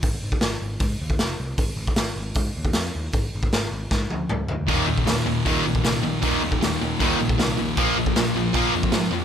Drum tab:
HH |o---o---o---o---|o---o---o---o---|o---o-----------|o---o---o---o---|
SD |----o-------o---|----o-------o---|----o---o-------|----o-------o---|
T1 |----------------|----------------|----------o-----|----------------|
T2 |----------------|----------------|------------o---|----------------|
FT |----------------|----------------|--------------o-|----------------|
BD |o--o----o--o----|o--o----o--o----|o--o----o-------|o--o----o--o----|

HH |o---o---o---o---|o---o---o---o---|
SD |----o-------o---|----o-------o---|
T1 |----------------|----------------|
T2 |----------------|----------------|
FT |----------------|----------------|
BD |o--o----o--o----|o--o----o--o----|